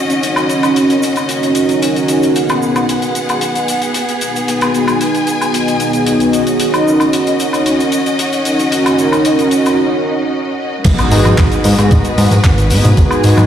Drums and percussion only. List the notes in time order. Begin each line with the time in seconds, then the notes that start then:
0.10 closed hi-hat, shaker
0.23 closed hi-hat, shaker
0.36 closed hi-hat, high woodblock, shaker
0.49 closed hi-hat, shaker
0.63 closed hi-hat, high woodblock, shaker
0.76 closed hi-hat, shaker
0.90 closed hi-hat, shaker
1.03 closed hi-hat, shaker
1.16 closed hi-hat, high woodblock, shaker
1.29 closed hi-hat, shaker
1.43 closed hi-hat, shaker
1.55 closed hi-hat, shaker
1.69 closed hi-hat, shaker
1.82 closed hi-hat, shaker
1.96 closed hi-hat, shaker
2.08 closed hi-hat, shaker
2.23 closed hi-hat, shaker
2.36 closed hi-hat, shaker
2.49 closed hi-hat, high woodblock, shaker
2.62 shaker
2.76 closed hi-hat, high woodblock, shaker
2.89 closed hi-hat, shaker
3.02 closed hi-hat, shaker
3.15 closed hi-hat, shaker
3.29 closed hi-hat, high woodblock, shaker
3.41 closed hi-hat, shaker
3.56 closed hi-hat, shaker
3.68 closed hi-hat, shaker
3.82 closed hi-hat, shaker
3.94 closed hi-hat, shaker
4.09 closed hi-hat, shaker
4.21 closed hi-hat, shaker
4.36 closed hi-hat, shaker
4.48 closed hi-hat, shaker
4.61 closed hi-hat, high woodblock, shaker
4.74 closed hi-hat, shaker
4.88 closed hi-hat, high woodblock, shaker
5.01 closed hi-hat, shaker
5.15 closed hi-hat, shaker
5.27 closed hi-hat, shaker
5.41 closed hi-hat, high woodblock, shaker
5.54 closed hi-hat, shaker
5.68 closed hi-hat, shaker
5.80 closed hi-hat, shaker
5.93 closed hi-hat, shaker
6.07 closed hi-hat, shaker
6.20 closed hi-hat, shaker
6.33 closed hi-hat, shaker
6.47 closed hi-hat, shaker
6.60 closed hi-hat, shaker
6.74 closed hi-hat, high woodblock, shaker
6.88 shaker
7.00 closed hi-hat, high woodblock, shaker
7.13 closed hi-hat, shaker
7.27 closed hi-hat, shaker
7.40 closed hi-hat, shaker
7.53 closed hi-hat, high woodblock, shaker
7.66 closed hi-hat, shaker
7.80 closed hi-hat, shaker
7.92 closed hi-hat, shaker
8.06 closed hi-hat, shaker
8.19 closed hi-hat, shaker
8.32 closed hi-hat, shaker
8.45 closed hi-hat, shaker
8.59 closed hi-hat, shaker
8.72 closed hi-hat, shaker
8.86 closed hi-hat, high woodblock, shaker
8.99 closed hi-hat, shaker
9.12 closed hi-hat, high woodblock, shaker
9.25 closed hi-hat, shaker
9.39 closed hi-hat, shaker
9.51 closed hi-hat, shaker
9.66 closed hi-hat, high woodblock, shaker
10.84 kick, closed hi-hat, tambourine, crash, shaker
10.98 closed hi-hat, high woodblock, shaker
11.11 open hi-hat, tambourine, shaker
11.25 closed hi-hat, tambourine, high conga, high woodblock, shaker
11.38 kick, clap, closed hi-hat, tambourine, shaker
11.52 closed hi-hat, shaker
11.64 open hi-hat, tambourine, shaker
11.78 closed hi-hat, tambourine, high woodblock, shaker
11.91 kick, closed hi-hat, tambourine, shaker
12.05 closed hi-hat, shaker
12.18 open hi-hat, tambourine, shaker
12.31 closed hi-hat, tambourine, muted conga, high conga, shaker
12.44 kick, clap, closed hi-hat, tambourine, shaker
12.58 closed hi-hat, shaker
12.70 open hi-hat, tambourine, shaker
12.84 closed hi-hat, tambourine, low conga, shaker
12.97 kick, closed hi-hat, tambourine, shaker
13.11 closed hi-hat, high woodblock, shaker
13.23 open hi-hat, tambourine, shaker
13.37 closed hi-hat, tambourine, high conga, high woodblock, shaker